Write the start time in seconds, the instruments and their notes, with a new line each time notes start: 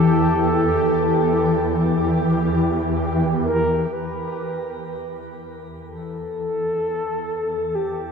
Already playing: synth drone E2 E3, synth texture G4, soft synth lead A4
3.43 soft synth lead A#4
3.92 synth drone E2 E3, soft synth lead B4
5.85 soft synth lead A4
7.75 soft synth lead G4